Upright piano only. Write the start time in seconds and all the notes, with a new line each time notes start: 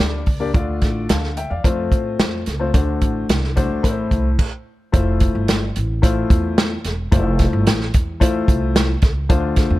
Already playing: G2 A#3 D4 G4
0.00 D5
0.40 A#3 D4 G4 D5
0.54 D3 A3 D4 F4 D5
1.09 F5 A5
1.37 E5 G5
1.50 D5 F5
1.64 A3 C4 F4 C5
2.59 A3 C4 F4 C5
2.74 D3 A3 D4 F#4 C5
3.56 A3 D4 F#4 C5
3.83 A2 A3 C4 E4 A#4
3.91 C5
4.92 A3 E4 F4 C5
6.02 A3 E4 F4 C5
7.11 A3 E4 F4 C5
8.20 A3 E4 F4 C5
9.29 D3 A3 D4 F4 C5